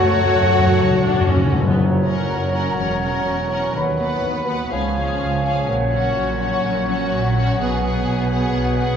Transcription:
Already playing: F#2 F#3 A3 F#4 C#5 F#5
0.04 F#2
0.12 F#2
0.19 F#2
0.24 F#3 A4
0.35 F#2
0.43 F#2
0.51 F#2 A3
0.59 F#2
0.67 F#2
0.75 F#2 C#3
0.82 F#2
0.90 F#2
0.98 F#2
1.02 F#2 A3 D4
1.14 F#2
1.21 F#2
1.28 F#2 C#4 A4
1.36 F#2
1.44 F#2
1.52 F#2 A3
1.60 F#2
1.68 F#2 B3
1.79 F#1 F#2 F#3 C#5 A#5
2.04 F#3 C#4 A#4 F#5
2.29 F#1 F#2 A#4
2.53 C#4 F#4 A#4 F#5
2.77 E1 E2 E3 C#4 A#4 F#5
3.02 C#4 A#4 F#5
3.26 E1 E2 F#4
3.49 C#4 A#4 C#5 F#5
3.75 D#2 D#3 B4 B5
3.99 B3 B4 F#5
4.23 D#2 F#4
4.47 B3 B4 F#5
4.71 C#2 C#3 F3 C#4 G#4 C#5 F5 G#5
4.96 C#4 G#4 F5
5.20 C#2 F4
5.45 C#4 G#4 C#5 F5
5.69 A#1 A#2 F#3 F#5
5.93 F#3 C#4 F#4 F#5
6.17 A#1 A#2 F#4
6.40 C#4 F#4 F#5
6.64 A#1 A#2
6.88 F#3 C#4 F#4 F#5
7.12 A#1 A#2 F#4
7.36 C#4 F#4 F#5
7.60 B1 B2 B3 G#4 B4 F#5 G#5
7.84 B3 G#4 F#5
8.08 B1 B2 F#4
8.31 B3 G#4 B4 F#5
8.55 B1 B2
8.79 B3 G#4 F#5

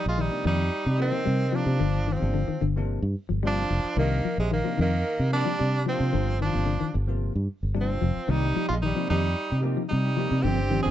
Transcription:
Already playing: F3
0.06 A#1 G#3 F4
0.18 D#3 G3 D#4
0.30 C3 F3 A#3 D4
0.45 F2 D#3 G3 D#4
0.86 C3
0.98 C3 D#3 F3 A#3 C4 D#4
1.12 F3
1.25 C3 G3
1.52 C3 F3 A#3 D4 D#4
1.66 C3
1.80 G1 D3
2.07 D#3 F3
2.13 C4
2.20 G1 C3 F3 A#3 D4
2.34 D3
2.48 D#3, muted fingered electric bass stroke
2.61 G1 D3
2.76 C3 F3 A#3 D4
3.02 G2
3.29 G1 F3
3.43 C3 F3 G3 A#3 D4
3.47 D4
3.70 F1, muted clean electric guitar stroke
3.84 muted fingered electric bass stroke
3.96 C2 C3 D#3 F3 A#3 D4
4.25 F3
4.38 A#1 C3 G#3
4.51 D#3 A#3
4.64 C3 F3 A#3 D4
4.78 F2 D#3
4.82 A#3
5.19 C3
5.32 C3 F3 G3 A#3 D4
5.46 F3
5.59 C3 G3
5.86 C3 F3 A#3 C4 D4
5.90 F3
6.00 C3
6.13 G1 D3
6.41 D#3 F3 D4
6.52 G1 C3 F3 A#3 D4
6.66 D3
6.80 D#3, muted fingered electric bass stroke
6.94 G1, muted clean electric guitar stroke
7.07 C3 F3 A#3 F4
7.36 G2
7.63 G1
7.75 C3 F3 G3 A#3 D4
7.81 F3 C4
8.01 F1 F3
8.17 muted fingered electric bass stroke
8.28 C2 C3 D#3 F3 A#3 D#4 G4
8.32 G3
8.43 D#4 G4
8.56 F3 A#3 D#4 G4
8.68 A#1 G#3 F4
8.82 D#3 G3 D#4
8.94 C3 F3 A#3 C4 D#4, muted clean electric guitar stroke
9.10 F2 D#3 G3 A#3 D#4 G4
9.51 C3 D#4 G4
9.61 C3 F3 A#3 D#4
9.66 D#4 G4
9.77 F3
9.89 C3 G3 D#4
10.05 D#4 G4
10.17 C3 F3 A#3 D#4 G4
10.32 C3
10.42 G1 D3 F3 C4 D4 G4
10.59 C4 D4 G4
10.70 D#3 F3 C4 D4 G4
10.83 G1 C3 F3 A#3 C4 D4 G#4

